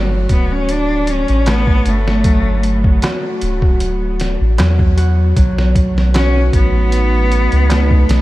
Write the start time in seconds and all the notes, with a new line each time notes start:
Already playing: G1 F#3 A3 F#4
0.29 B3, kick, closed hi-hat
0.52 C#4
0.69 D4, closed hi-hat
1.07 C#4, closed hi-hat
1.28 A1, closed hi-hat
1.46 A3 B3, snare, closed hi-hat, darbuka tek
1.67 kick
1.86 G1 A3, closed hi-hat
2.08 snare
2.24 F#3, kick, closed hi-hat
2.63 closed hi-hat
2.84 kick
3.02 F#4, snare, closed hi-hat, darbuka tek
3.41 D1, closed hi-hat
3.62 kick
3.80 closed hi-hat
4.20 snare, closed hi-hat
4.41 A1
4.58 E2 F#3, snare, closed hi-hat, darbuka tek
4.79 kick
4.97 F#4, closed hi-hat
5.36 B1 F#3 A3 D#4 B4, kick, closed hi-hat
5.58 snare
5.75 kick, closed hi-hat
5.98 snare
6.14 C#4 F#4, snare, closed hi-hat, darbuka tek
6.53 A1 B3, kick, closed hi-hat
6.92 closed hi-hat
7.32 closed hi-hat
7.52 C#2, closed hi-hat
7.70 A3, snare, closed hi-hat, darbuka tek
7.91 kick
8.09 B1, snare, closed hi-hat